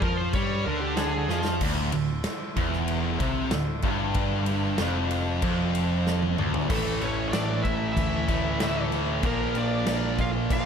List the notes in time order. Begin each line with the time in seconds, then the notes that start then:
Already playing: C#4 C#5
0.02 F2 F3 A#4, kick
0.17 C5
0.33 G2 G3 C#5, kick, crash
0.66 D2 D3 A#4
0.81 G4
0.97 G#4, snare, crash
1.29 F2 F3, snare
1.45 snare
1.60 D1 D2 D3 A3 E4 F4, kick, crash
1.92 D1 D2, ride
2.24 snare, ride
2.56 E1 E2, kick, ride
2.73 snare
2.88 ride
3.20 C2 C3, kick, ride
3.51 D1 D2, snare, ride
3.82 G1 G2, kick, ride
4.14 D4, kick, ride
4.46 ride
4.78 F1 F2, snare, ride
5.11 ride
5.42 F1 F2, kick, ride
5.75 ride
6.07 snare
6.22 high tom
6.38 D1 D2, mid tom
6.54 floor tom
6.69 A1 A2 E3 A3 E4 A4 E5, kick, crash
7.01 A1 C#4 C#5, crash
7.29 C#4 D4 C#5 D5
7.33 A1, snare, crash
7.63 A1 E4 E5, kick, crash
7.92 D2 E4 E5
7.97 kick, crash
8.28 A2 E3 A3, kick, crash
8.60 D2 A2 E3 A3, snare, crash
8.92 A2 E3 A3, crash
9.23 A#1 A#2 F3 A#3 F4 A#4 D5, kick, crash
9.55 A#1 D4 D5, crash
9.86 A#1, snare, crash
10.18 F4 F5, kick, crash
10.50 A#1 F4 F5, kick, crash